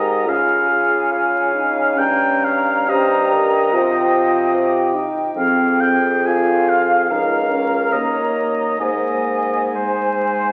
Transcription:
0.00 0.28 G#2 soft
0.00 0.27 G4 medium
0.00 0.29 A#4 soft
0.00 0.30 D#5 soft
0.00 0.30 A#5 soft
0.26 1.98 C#3 soft
0.26 1.54 F4 soft
0.26 0.69 G#4 soft
0.26 1.11 F5 soft
0.26 1.99 G#5 soft
0.69 1.14 G#4 soft
1.11 2.90 C#5 soft
1.11 2.00 F5 soft
1.55 1.97 D#4 medium
1.96 3.75 G2 soft
1.96 2.90 C#4 medium
1.96 2.46 G5 soft
1.96 3.77 A#5 soft
2.45 2.91 F5 medium
2.89 3.75 G4 medium
2.89 3.34 C5 medium
2.89 5.09 D#5 soft
3.33 3.76 A#4 medium
3.73 5.09 C3 medium
3.73 4.96 F4 medium
3.73 4.14 C5 medium
3.73 4.56 G5 soft
4.15 4.57 C5 soft
4.55 5.09 G4 soft
4.55 5.95 G5 soft
4.95 5.35 D#4 medium
5.36 7.06 F2 medium
5.36 5.95 C4 medium
5.36 7.06 G#4 soft
5.36 5.82 F5 soft
5.80 6.28 G5 medium
6.26 7.14 F4 medium
6.26 7.12 F5 soft
6.26 6.71 G#5 soft
6.69 7.09 F5 soft
7.09 7.90 C#2 soft
7.09 7.52 D#4 medium
7.09 7.94 A#4 soft
7.09 7.94 F5 soft
7.09 8.79 A#5 soft
7.51 7.92 C#4 medium
7.92 8.78 D#2 soft
7.92 8.79 A#3 medium
7.92 8.80 C#5 soft
7.92 8.80 D#5 soft
8.79 10.52 G#2 soft
8.79 9.77 A#3 soft
8.79 10.52 C5 soft
8.79 9.64 D#5 soft
8.79 10.52 G#5 soft
9.75 10.52 G#3 soft
9.75 10.52 C5 soft

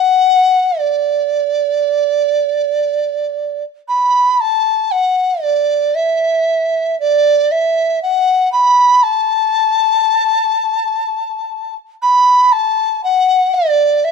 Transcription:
0.00 0.80 F#5 medium
0.79 3.63 D5 medium
3.88 4.42 B5 medium
4.40 4.92 A5 medium
4.91 5.44 F#5 medium
5.42 5.96 D5 medium
5.94 6.98 E5 medium
6.99 7.52 D5 loud
7.51 8.02 E5 medium
8.02 8.49 F#5 medium
8.52 9.04 B5 loud
9.03 11.75 A5 loud
12.02 12.53 B5 loud
12.52 13.01 A5 loud
13.03 13.55 F#5 loud
13.54 14.05 D5 medium
14.04 14.12 E5 medium

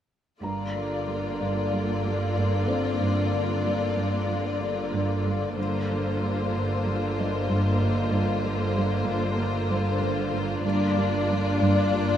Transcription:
0.42 5.53 G1 soft
0.42 0.63 G2 soft
0.42 5.53 G2 soft
0.42 5.52 D3 soft
0.42 5.52 A#3 soft
0.42 5.53 F4 soft
0.42 5.53 D5 soft
0.42 2.33 A#5 soft
0.76 0.95 G3 soft
1.08 1.27 G3 soft
1.41 1.60 G2 soft
1.41 3.29 D5 soft
1.73 1.92 G3 soft
2.05 2.24 G3 soft
2.36 2.55 G2 soft
2.68 2.88 G2 soft
2.68 4.57 C4 soft
2.68 4.57 C5 soft
3.01 3.20 G2 soft
3.33 3.52 G3 soft
3.65 3.84 G3 soft
3.96 4.16 G2 soft
4.29 4.48 G3 soft
4.60 4.80 G3 soft
4.94 5.13 G2 soft
5.26 5.45 G2 soft
5.57 10.60 G1 soft
5.57 5.76 G2 soft
5.57 10.60 G2 soft
5.57 10.60 D3 soft
5.57 10.60 A#3 soft
5.57 10.60 F4 soft
5.57 10.60 C5 soft
5.90 6.09 G3 soft
6.21 6.41 G3 soft
6.54 6.73 G2 soft
6.86 7.05 G3 soft
7.17 7.36 G3 soft
7.17 9.03 D#5 soft
7.49 7.67 G2 soft
7.81 7.99 G2 soft
8.12 8.31 G2 soft
8.43 8.62 G3 soft
8.75 8.93 G3 soft
9.07 9.26 G2 soft
9.38 9.57 G3 soft
9.69 9.88 G3 soft
10.00 10.19 G2 soft
10.32 10.51 G2 soft
10.64 12.17 G1 soft
10.64 10.84 G2 soft
10.64 12.17 G2 soft
10.64 12.17 A#3 soft
10.64 12.17 D4 soft
10.64 12.17 F4 soft
10.64 12.17 D5 soft
10.97 11.16 G3 soft
11.26 11.48 G3 soft
11.26 12.17 D5 soft
11.61 11.80 G2 medium
11.92 12.11 G3 soft

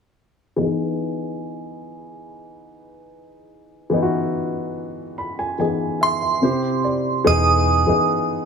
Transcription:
0.56 3.87 E3 medium
0.56 3.88 B3 medium
0.60 3.89 D#4 medium
0.60 3.90 G#4 medium
3.90 5.54 E3 medium
3.90 5.55 B3 medium
3.90 5.56 D#4 medium
3.96 4.01 E4 medium
4.02 5.61 F#4 medium
5.18 5.37 B5 medium
5.39 5.58 G#5 medium
5.58 6.42 E3 medium
5.58 6.43 B3 soft
5.58 6.43 D#4 soft
5.58 6.44 G#4 medium
5.58 5.98 G#5 medium
6.01 6.20 E5 medium
6.01 7.31 C6 medium
6.22 6.41 E5 medium
6.41 7.25 C3 medium
6.41 7.26 C4 medium
6.41 7.26 E4 medium
6.41 7.27 G4 medium
6.41 6.81 C5 medium
6.84 7.23 D5 medium
7.24 7.85 E1 loud
7.24 7.70 E3 medium
7.24 7.70 B3 medium
7.24 7.71 D#4 medium
7.24 7.71 G#4 loud
7.24 8.06 D#6 loud
7.87 8.45 E3 medium
7.87 8.45 B3 medium
7.87 8.45 D#4 medium
7.87 8.45 G#4 medium
7.87 muted fingered electric bass stroke soft

